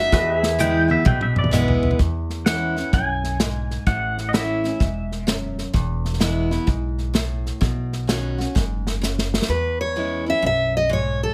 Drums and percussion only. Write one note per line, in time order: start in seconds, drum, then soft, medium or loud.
0.12 kick medium
0.12 snare medium
0.43 snare medium
0.59 hi-hat pedal medium
0.59 high tom medium
0.90 high tom medium
1.06 kick loud
1.06 mid tom medium
1.21 mid tom medium
1.36 mid tom medium
1.44 mid tom medium
1.53 hi-hat pedal medium
1.53 mid tom loud
1.68 floor tom medium
1.83 floor tom loud
1.91 floor tom medium
1.99 kick medium
1.99 snare soft
2.30 snare soft
2.46 snare loud
2.46 hi-hat pedal medium
2.77 snare soft
2.93 kick loud
2.93 snare soft
3.24 snare soft
3.40 snare medium
3.40 hi-hat pedal medium
3.71 snare soft
3.87 kick medium
3.87 snare soft
4.18 snare soft
4.34 snare medium
4.34 hi-hat pedal medium
4.64 snare soft
4.80 kick loud
4.80 snare soft
5.12 snare soft
5.28 snare medium
5.28 hi-hat pedal medium
5.58 snare soft
5.74 kick medium
5.74 snare soft
6.05 snare soft
6.13 snare soft
6.20 snare loud
6.20 hi-hat pedal medium
6.51 snare soft
6.67 kick medium
6.67 snare soft
6.98 snare soft
7.15 snare medium
7.15 hi-hat pedal medium
7.46 snare soft
7.62 kick loud
7.62 snare soft
7.92 snare soft
8.09 snare medium
8.09 hi-hat pedal medium
8.40 snare soft
8.56 kick loud
8.56 snare soft
8.87 snare medium
9.03 snare medium
9.03 hi-hat pedal medium
9.19 snare medium
9.34 snare medium
9.42 snare medium